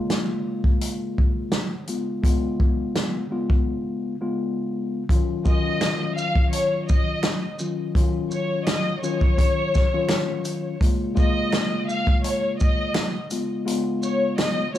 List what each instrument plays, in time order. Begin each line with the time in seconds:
Already playing: tine electric piano C#3 G#3 A#3 F4
0.10 snare, closed hi-hat
0.64 kick
0.81 closed hi-hat
1.18 kick
1.52 snare, closed hi-hat
1.87 tine electric piano C#3 G#3 B3 F4, closed hi-hat
2.22 tine electric piano C#3 G#3 B3 F4, kick, closed hi-hat
2.60 kick
2.95 snare, closed hi-hat
3.31 tine electric piano C#3 G#3 B3 F4
3.50 kick
4.21 tine electric piano C#3 G#3 B3 F4
5.09 tine electric piano D#3 F#3 C#4 F4, kick, closed hi-hat
5.44 tine electric piano D#3 F#3 C#4 F4, violin section D#5, kick, shaker
5.81 finger snap, snare, closed hi-hat
6.16 violin section F5, shaker
6.36 kick
6.51 violin section C#5, closed hi-hat
6.88 violin section D#5, kick, shaker
7.23 finger snap, snare, closed hi-hat
7.59 tine electric piano D#3 F#3 C#4 F4, shaker
7.95 tine electric piano D#3 F#3 C#4 F4, kick, closed hi-hat
8.31 violin section C#5, shaker
8.66 violin section D#5, finger snap, snare, closed hi-hat
9.02 tine electric piano D#3 F#3 C#4 F4, violin section C#5, shaker
9.21 kick
9.38 kick, closed hi-hat
9.75 kick, snare, shaker
9.93 tine electric piano D#3 F#3 C#4 F4
10.09 finger snap, snare, closed hi-hat
10.45 closed hi-hat, shaker
10.80 tine electric piano C#3 G#3 A#3 F4, kick, closed hi-hat
11.15 tine electric piano C#3 G#3 A#3 F4, violin section D#5, kick, shaker
11.52 finger snap, snare, closed hi-hat
11.89 violin section F5, shaker
12.07 kick
12.24 violin section C#5, closed hi-hat
12.59 violin section D#5, kick, shaker
12.94 finger snap, snare, closed hi-hat
13.30 tine electric piano C#3 G#3 B3 F4, closed hi-hat, shaker
13.65 tine electric piano C#3 G#3 B3 F4, closed hi-hat
14.03 violin section C#5, shaker
14.38 violin section D#5, finger snap, snare, closed hi-hat
14.73 tine electric piano C#3 G#3 B3 F4, violin section C#5, shaker